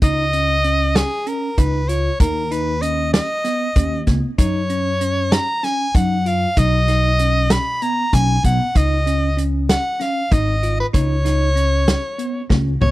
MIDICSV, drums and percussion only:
0, 0, Header, 1, 2, 480
1, 0, Start_track
1, 0, Tempo, 624350
1, 14, Time_signature, 7, 3, 24, 8
1, 9928, End_track
2, 0, Start_track
2, 0, Title_t, "Drums"
2, 14, Note_on_c, 9, 42, 72
2, 15, Note_on_c, 9, 36, 101
2, 91, Note_off_c, 9, 42, 0
2, 92, Note_off_c, 9, 36, 0
2, 255, Note_on_c, 9, 42, 56
2, 332, Note_off_c, 9, 42, 0
2, 495, Note_on_c, 9, 42, 50
2, 572, Note_off_c, 9, 42, 0
2, 735, Note_on_c, 9, 38, 98
2, 735, Note_on_c, 9, 42, 75
2, 812, Note_off_c, 9, 38, 0
2, 812, Note_off_c, 9, 42, 0
2, 974, Note_on_c, 9, 42, 53
2, 1051, Note_off_c, 9, 42, 0
2, 1213, Note_on_c, 9, 42, 72
2, 1214, Note_on_c, 9, 36, 93
2, 1290, Note_off_c, 9, 42, 0
2, 1291, Note_off_c, 9, 36, 0
2, 1455, Note_on_c, 9, 42, 63
2, 1532, Note_off_c, 9, 42, 0
2, 1692, Note_on_c, 9, 36, 102
2, 1692, Note_on_c, 9, 42, 86
2, 1769, Note_off_c, 9, 36, 0
2, 1769, Note_off_c, 9, 42, 0
2, 1935, Note_on_c, 9, 42, 61
2, 2012, Note_off_c, 9, 42, 0
2, 2172, Note_on_c, 9, 42, 65
2, 2249, Note_off_c, 9, 42, 0
2, 2412, Note_on_c, 9, 38, 112
2, 2412, Note_on_c, 9, 42, 83
2, 2489, Note_off_c, 9, 38, 0
2, 2489, Note_off_c, 9, 42, 0
2, 2650, Note_on_c, 9, 38, 30
2, 2650, Note_on_c, 9, 42, 64
2, 2727, Note_off_c, 9, 38, 0
2, 2727, Note_off_c, 9, 42, 0
2, 2889, Note_on_c, 9, 42, 77
2, 2890, Note_on_c, 9, 36, 96
2, 2966, Note_off_c, 9, 42, 0
2, 2967, Note_off_c, 9, 36, 0
2, 3129, Note_on_c, 9, 38, 34
2, 3129, Note_on_c, 9, 42, 53
2, 3131, Note_on_c, 9, 36, 69
2, 3206, Note_off_c, 9, 38, 0
2, 3206, Note_off_c, 9, 42, 0
2, 3208, Note_off_c, 9, 36, 0
2, 3371, Note_on_c, 9, 36, 94
2, 3372, Note_on_c, 9, 42, 81
2, 3448, Note_off_c, 9, 36, 0
2, 3449, Note_off_c, 9, 42, 0
2, 3612, Note_on_c, 9, 42, 55
2, 3689, Note_off_c, 9, 42, 0
2, 3852, Note_on_c, 9, 42, 60
2, 3929, Note_off_c, 9, 42, 0
2, 4090, Note_on_c, 9, 38, 109
2, 4090, Note_on_c, 9, 42, 80
2, 4167, Note_off_c, 9, 38, 0
2, 4167, Note_off_c, 9, 42, 0
2, 4335, Note_on_c, 9, 38, 33
2, 4335, Note_on_c, 9, 42, 53
2, 4412, Note_off_c, 9, 38, 0
2, 4412, Note_off_c, 9, 42, 0
2, 4572, Note_on_c, 9, 36, 95
2, 4572, Note_on_c, 9, 42, 66
2, 4649, Note_off_c, 9, 36, 0
2, 4649, Note_off_c, 9, 42, 0
2, 4813, Note_on_c, 9, 42, 54
2, 4890, Note_off_c, 9, 42, 0
2, 5049, Note_on_c, 9, 42, 74
2, 5051, Note_on_c, 9, 36, 96
2, 5126, Note_off_c, 9, 42, 0
2, 5128, Note_off_c, 9, 36, 0
2, 5290, Note_on_c, 9, 38, 33
2, 5290, Note_on_c, 9, 42, 61
2, 5367, Note_off_c, 9, 38, 0
2, 5367, Note_off_c, 9, 42, 0
2, 5529, Note_on_c, 9, 42, 63
2, 5606, Note_off_c, 9, 42, 0
2, 5767, Note_on_c, 9, 38, 114
2, 5767, Note_on_c, 9, 42, 89
2, 5844, Note_off_c, 9, 38, 0
2, 5844, Note_off_c, 9, 42, 0
2, 6011, Note_on_c, 9, 42, 60
2, 6088, Note_off_c, 9, 42, 0
2, 6250, Note_on_c, 9, 42, 78
2, 6251, Note_on_c, 9, 36, 88
2, 6327, Note_off_c, 9, 42, 0
2, 6328, Note_off_c, 9, 36, 0
2, 6491, Note_on_c, 9, 36, 74
2, 6492, Note_on_c, 9, 42, 68
2, 6568, Note_off_c, 9, 36, 0
2, 6569, Note_off_c, 9, 42, 0
2, 6731, Note_on_c, 9, 36, 96
2, 6731, Note_on_c, 9, 42, 81
2, 6808, Note_off_c, 9, 36, 0
2, 6808, Note_off_c, 9, 42, 0
2, 6974, Note_on_c, 9, 42, 64
2, 7051, Note_off_c, 9, 42, 0
2, 7214, Note_on_c, 9, 42, 60
2, 7291, Note_off_c, 9, 42, 0
2, 7453, Note_on_c, 9, 38, 106
2, 7453, Note_on_c, 9, 42, 88
2, 7530, Note_off_c, 9, 38, 0
2, 7530, Note_off_c, 9, 42, 0
2, 7693, Note_on_c, 9, 38, 29
2, 7693, Note_on_c, 9, 42, 54
2, 7770, Note_off_c, 9, 38, 0
2, 7770, Note_off_c, 9, 42, 0
2, 7931, Note_on_c, 9, 36, 95
2, 7931, Note_on_c, 9, 42, 70
2, 8008, Note_off_c, 9, 36, 0
2, 8008, Note_off_c, 9, 42, 0
2, 8174, Note_on_c, 9, 42, 57
2, 8251, Note_off_c, 9, 42, 0
2, 8412, Note_on_c, 9, 36, 100
2, 8413, Note_on_c, 9, 42, 71
2, 8489, Note_off_c, 9, 36, 0
2, 8489, Note_off_c, 9, 42, 0
2, 8654, Note_on_c, 9, 38, 36
2, 8654, Note_on_c, 9, 42, 55
2, 8731, Note_off_c, 9, 38, 0
2, 8731, Note_off_c, 9, 42, 0
2, 8895, Note_on_c, 9, 42, 58
2, 8972, Note_off_c, 9, 42, 0
2, 9132, Note_on_c, 9, 38, 100
2, 9132, Note_on_c, 9, 42, 85
2, 9209, Note_off_c, 9, 38, 0
2, 9209, Note_off_c, 9, 42, 0
2, 9372, Note_on_c, 9, 42, 58
2, 9449, Note_off_c, 9, 42, 0
2, 9610, Note_on_c, 9, 38, 56
2, 9611, Note_on_c, 9, 36, 84
2, 9687, Note_off_c, 9, 38, 0
2, 9688, Note_off_c, 9, 36, 0
2, 9852, Note_on_c, 9, 45, 75
2, 9928, Note_off_c, 9, 45, 0
2, 9928, End_track
0, 0, End_of_file